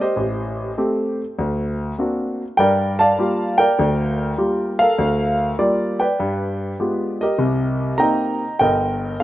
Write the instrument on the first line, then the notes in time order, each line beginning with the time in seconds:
grand piano
Already playing: A#4
0.01 G4 C5 D#5
0.17 A1
0.78 A3 C4 G4
1.39 D2
1.98 A#3 C4 D4 F#4
2.57 G2 G3 A#4 D5 G5
2.99 D5 F5 A5
3.18 G3 A#3 F4 G4
3.58 A#4 D5 G5
3.79 D2 D3
4.38 G3 A#3 F4 G4
4.79 A4 A#4 F5
4.99 D2
5.59 G3 A#3 F4 G4 D5
6.00 B4 D5 G5
6.20 G2
6.79 G#3 B3 F4 G4
7.21 G4 A#4 D#5
7.38 C2 C3
7.98 A#3 C4 D#4 D#5 G5 A#5
8.59 G1 A#4 D#5 G5
9.20 F5